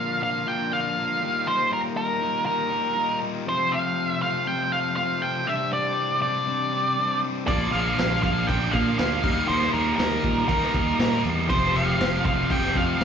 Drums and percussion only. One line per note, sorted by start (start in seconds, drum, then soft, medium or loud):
7.48 kick loud
7.48 crash medium
7.73 crash medium
7.99 snare loud
7.99 crash loud
8.23 kick medium
8.23 crash medium
8.49 kick medium
8.49 crash medium
8.73 kick medium
8.73 crash medium
8.99 snare loud
8.99 crash medium
9.24 kick loud
9.24 crash loud
9.49 crash medium
9.62 snare soft
9.74 crash medium
9.99 snare loud
9.99 crash medium
10.24 kick medium
10.24 crash medium
10.49 kick loud
10.49 crash medium
10.62 snare soft
10.74 kick medium
10.74 crash medium
10.99 snare loud
10.99 crash medium
11.25 crash medium
11.50 kick loud
11.50 crash medium
11.63 snare soft
11.76 crash medium
12.01 snare loud
12.01 crash medium
12.25 kick medium
12.25 crash medium
12.50 kick medium
12.50 crash loud
12.64 snare soft
12.75 kick medium
12.75 crash medium
13.01 crash loud